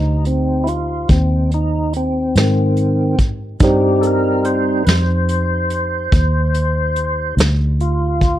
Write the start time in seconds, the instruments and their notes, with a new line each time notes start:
Already playing: fingered electric bass D2, tonewheel organ D#4, grand piano D#4 G4 C5
0.25 tonewheel organ C4, closed hi-hat
0.64 tonewheel organ E4, closed hi-hat
0.69 tonewheel organ F4
1.09 fingered electric bass D#2, tonewheel organ C4, kick, closed hi-hat
1.51 tonewheel organ D#4, closed hi-hat
1.93 tonewheel organ C4, closed hi-hat
2.36 fingered electric bass G#2, tonewheel organ D#3 C4, snare, closed hi-hat
2.77 closed hi-hat
3.19 kick, closed hi-hat
3.60 fingered electric bass G2, tonewheel organ G3 C4, grand piano D#4 G4 C5, kick, closed hi-hat
3.64 tonewheel organ D#4 G4
4.01 tonewheel organ A4, closed hi-hat
4.07 tonewheel organ A#4
4.45 tonewheel organ C5, closed hi-hat
4.85 fingered electric bass F2, tonewheel organ B4, snare, closed hi-hat
4.89 tonewheel organ C5
5.29 closed hi-hat
5.70 closed hi-hat
6.12 fingered electric bass D#2, kick, closed hi-hat
6.54 closed hi-hat
6.96 closed hi-hat
7.37 fingered electric bass D2, snare, closed hi-hat
7.80 tonewheel organ F4, closed hi-hat
8.21 kick, closed hi-hat